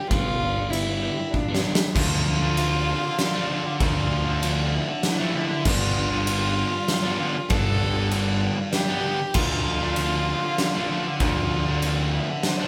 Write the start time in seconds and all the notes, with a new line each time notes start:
Already playing: D3 D4 G4
0.08 G1 G2 D3 G3 F4, kick, ride
0.12 B3 D4
0.42 D3
0.55 G3 B3 D4
0.70 G2 D3 G3 B3 E4, ride
0.74 D4
0.87 G3 B3 D4
1.02 G4
1.19 muted distorted electric guitar stroke
1.31 D4 F4, kick
1.48 G3 B3 D4
1.55 snare
1.64 D3 G3 B3 D4 G4
1.75 snare
1.80 muted distorted electric guitar stroke
1.94 D2 D3 F3 A3 D4 F4, kick, crash
2.26 F3
2.41 F3 A3 D4
2.56 D3 F3 A3 C4 D4, ride
2.71 F3 A3 D4
3.03 muted distorted electric guitar stroke
3.18 D4, snare, ride
3.35 F3 A3 D4
3.49 D3 F3 A3 D4
3.66 muted distorted electric guitar stroke
3.80 D2 D3 F3 A3 D4 F4, kick, ride
4.11 F3
4.27 F3 A3 D4
4.42 D3 F3 A3 C4 D4, ride
4.58 F3 A3 D4
4.74 E4
4.90 muted distorted electric guitar stroke
5.03 D4 E4, snare, ride
5.19 F3 A3 D4
5.35 D3 F3 A3 D4 E4
5.51 muted distorted electric guitar stroke
5.65 G1 G2 D3 G3 B3 D4 F4, kick, crash
5.97 D3
6.11 G3 B3 D4
6.26 G2 D3 G3 B3 D4, ride
6.42 G3 B3 D4
6.58 G4
6.73 muted distorted electric guitar stroke
6.88 F4, snare, ride
7.04 G3 B3 D4
7.20 D3 G3 B3 D4 G4
7.36 muted distorted electric guitar stroke
7.49 G1 G2 D3 G3 B3 D4 A4, kick, ride
7.82 D3
7.96 G3 B3 D4
8.11 G2 D3 G3 B3 D4, ride
8.27 G3 B3 D4
8.43 G4
8.58 muted distorted electric guitar stroke
8.73 F4 G4, snare, ride
8.89 G3 B3 D4
9.04 D3 G3 B3 D4 G4
9.20 muted distorted electric guitar stroke
9.34 D2 D3 F3 A3 D4 F4, kick, crash
9.66 F3
9.81 F3 A3 D4
9.96 D3 F3 A3 C4 D4, ride
10.13 F3 A3 D4
10.44 muted distorted electric guitar stroke
10.58 D4, snare, ride
10.74 F3 A3 D4
10.90 D3 F3 A3 D4
11.06 muted distorted electric guitar stroke
11.19 D2 D3 F3 F4, kick, ride
11.23 A3 D4
11.52 F3
11.68 F3 A3 D4
11.82 D3 F3 A3 C4 D4, ride
11.99 F3 A3 D4
12.14 E4
12.30 muted distorted electric guitar stroke
12.43 D4 C5, snare, ride
12.61 F3 A3 D4